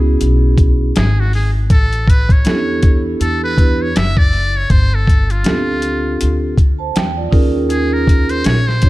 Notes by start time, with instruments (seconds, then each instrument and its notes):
Already playing: upright bass C#2, vibraphone B3 C#4 E4 F#4 G#4
0.21 upright bass B1, closed hi-hat
0.58 kick, closed hi-hat
0.96 upright bass G#1, muted trumpet G#4, snare, closed hi-hat
1.20 muted trumpet F#4
1.33 muted trumpet G#4, open hi-hat
1.70 upright bass A1, muted trumpet A4, kick, closed hi-hat
1.93 closed hi-hat
2.08 muted trumpet B4, kick, closed hi-hat
2.29 muted trumpet C#5, kick, closed hi-hat
2.44 upright bass E2, vibraphone B3 C#4 E4 G4 A4, snare, closed hi-hat
2.51 vibraphone D4
2.83 kick, closed hi-hat
3.20 upright bass E2, muted trumpet A4, closed hi-hat
3.44 muted trumpet B4
3.56 vibraphone B3 D4 E4 G4 B4, kick, closed hi-hat
3.82 muted trumpet C#5
3.96 upright bass F#1, muted trumpet E5, snare, closed hi-hat
4.17 muted trumpet D5, kick
4.33 open hi-hat
4.57 muted trumpet C#5
4.70 upright bass G1, muted trumpet C5, kick, closed hi-hat
4.95 muted trumpet A4
5.07 kick, closed hi-hat
5.30 muted trumpet F4, closed hi-hat
5.43 upright bass D2, vibraphone B3 D4 F4 G4 A4, snare, closed hi-hat
5.50 vibraphone C4
5.82 closed hi-hat
6.21 upright bass D2, closed hi-hat
6.58 kick, closed hi-hat
6.79 vibraphone C5 A5
6.95 upright bass E2, vibraphone G5, snare, closed hi-hat
7.17 vibraphone F4 D5
7.31 upright bass D#2, vibraphone C#4 D#4 F4 G#4 A#4, kick, open hi-hat
7.70 muted trumpet G#4, closed hi-hat
7.94 muted trumpet A#4
8.07 kick, closed hi-hat
8.29 muted trumpet C5, closed hi-hat
8.44 upright bass A#1, muted trumpet C#5, snare, closed hi-hat
8.68 muted trumpet C5, snare
8.82 vibraphone C#4 D#4 F4 G4 C#5, kick, closed hi-hat